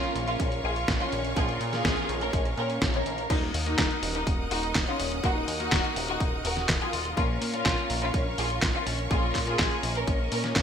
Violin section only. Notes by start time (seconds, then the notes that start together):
Already playing: C#4 F4
0.28 C#4 F4
0.64 F4 G#4
1.00 C#4 F4
1.37 F4 G#4
1.73 F4 G#4
2.21 C#4 A#4
2.58 C#4 A#4
2.94 A#4 C#5
3.30 D#4
3.66 D#4
4.15 D#4
4.51 D#4 F#4
4.87 C#4 F4
5.24 D#4 F#4
5.60 D#4 F#4
6.08 D#4 F#4
6.45 F#4 A#4
6.81 F4 G#4
7.17 C#4 F4
7.53 C#4 F4
8.02 C#4 F4
8.38 F4 G#4
8.75 C#4 F4
9.11 F4 G#4
9.47 F4 G#4
9.95 C#4 A#4
10.32 C#4 A#4